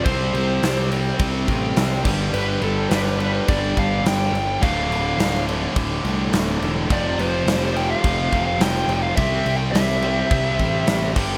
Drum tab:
CC |x-x-x-x-x-x-x-x-|x-x-x-x-x-x-x-x-|x-x-x-x-x-x-x-x-|x-x-x-x-x-x-x-x-|
SD |----o-------o---|----oo------o---|----o-------o---|----o-------o---|
BD |o-------o-o---o-|--------o-o-----|o-------o-------|o-------o-o-----|

CC |x-x-x-x-x-x-x-x-|
SD |----oo------o---|
BD |o-------o-o---o-|